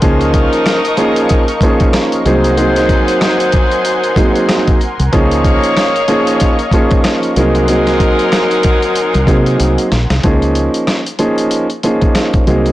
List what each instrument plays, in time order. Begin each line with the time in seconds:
0.01 fingered electric bass C#2, saxophone section F3 D#4 A#4, grand piano F3 A#3 C#4 D#4 G#4, analog synth pad A#4 D#5 F5 C#6, kick, closed hi-hat
0.21 closed hi-hat
0.34 kick, closed hi-hat
0.53 closed hi-hat
0.66 cross-stick, snare, closed hi-hat
0.85 closed hi-hat
0.97 grand piano F3 A#3 C#4 D#4 G#4, closed hi-hat
1.16 closed hi-hat
1.29 kick, closed hi-hat
1.48 closed hi-hat
1.61 grand piano F3 A#3 C#4 D#4 G#4, kick, closed hi-hat
1.80 kick, closed hi-hat
1.93 cross-stick, snare, closed hi-hat
2.12 closed hi-hat
2.25 fingered electric bass C2, grand piano F#3 A#3 C4 D#4 G#4, saxophone section F#3 D#4 C5, analog synth pad F#5 G#5 C6, closed hi-hat
2.44 closed hi-hat
2.57 grand piano F#3 A#3 C4 D#4 G#4, closed hi-hat
2.76 snare, closed hi-hat
2.89 kick, closed hi-hat
3.08 closed hi-hat
3.21 cross-stick, snare, closed hi-hat
3.40 closed hi-hat
3.52 kick, closed hi-hat
3.71 closed hi-hat
3.85 closed hi-hat
4.03 closed hi-hat
4.16 grand piano F#3 A#3 C4 D#4 G#4, kick, closed hi-hat
4.35 closed hi-hat
4.49 cross-stick, snare, closed hi-hat
4.67 kick, closed hi-hat
4.81 closed hi-hat
5.00 fingered electric bass C2, closed hi-hat
5.12 fingered electric bass C#2, grand piano F3 A#3 C#4 D#4 G#4, saxophone section A#3 G#4 C#5, analog synth pad D#5 F5 C#6, kick, closed hi-hat
5.32 closed hi-hat
5.44 kick, closed hi-hat
5.64 closed hi-hat
5.77 cross-stick, snare, closed hi-hat
5.96 closed hi-hat
6.08 grand piano F3 A#3 C#4 D#4 G#4, closed hi-hat
6.27 closed hi-hat
6.40 kick, closed hi-hat
6.59 closed hi-hat
6.71 grand piano F3 A#3 C#4 D#4 G#4, kick, closed hi-hat
6.91 kick, closed hi-hat
7.04 cross-stick, snare, closed hi-hat
7.23 closed hi-hat
7.36 fingered electric bass C2, grand piano F#3 A#3 C4 D#4 G#4, saxophone section F#3 D#4 A#4, analog synth pad F#5 G#5 C6, closed hi-hat
7.55 closed hi-hat
7.68 grand piano F#3 A#3 C4 D#4 G#4, closed hi-hat
7.87 snare, closed hi-hat
8.00 kick, closed hi-hat
8.19 closed hi-hat
8.32 cross-stick, snare, closed hi-hat
8.51 closed hi-hat
8.63 kick, closed hi-hat
8.82 closed hi-hat
8.96 closed hi-hat
9.14 fingered electric bass C2, closed hi-hat
9.27 fingered electric bass C3, grand piano F#3 A#3 C4 D#4 G#4, kick, closed hi-hat
9.46 closed hi-hat
9.60 fingered electric bass C2, closed hi-hat
9.78 closed hi-hat
9.92 fingered electric bass A#1, snare, closed hi-hat
10.10 fingered electric bass C2, snare, closed hi-hat
10.23 fingered electric bass C#2, grand piano F3 A#3 C#4 D#4 G#4, kick, closed hi-hat
10.42 closed hi-hat
10.55 closed hi-hat
10.74 closed hi-hat
10.87 cross-stick, snare, closed hi-hat
11.06 closed hi-hat
11.19 grand piano F3 A#3 C#4 D#4 G#4, closed hi-hat
11.38 closed hi-hat
11.51 closed hi-hat
11.70 closed hi-hat
11.83 grand piano F3 A#3 C#4 D#4 G#4, closed hi-hat
12.02 kick, closed hi-hat
12.15 cross-stick, snare, closed hi-hat
12.34 kick, closed hi-hat
12.47 fingered electric bass C2, grand piano F#3 A#3 C4 D#4 G#4, closed hi-hat
12.66 closed hi-hat